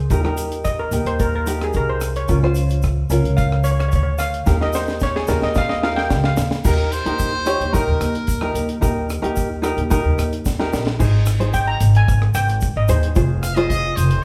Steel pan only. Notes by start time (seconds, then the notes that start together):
0.64 D#5
0.79 A#4
1.07 C5
1.21 A#4
1.36 A#4
1.64 G#4
1.77 A#4
1.89 C5
2.17 C#5
3.37 F5
3.64 C#5
3.71 C#5
3.79 C#5
3.88 C#5
3.95 C#5
4.03 C#5
4.19 F5
4.62 D#5
4.75 C5
5.03 C#5
5.16 G#4
5.29 A#4
5.43 D#5
5.58 F5
5.69 D#5
5.83 F5
5.96 G5
6.25 F5
11.54 G5
11.68 A#5
11.97 G#5
12.35 G5
12.77 D#5
12.89 C5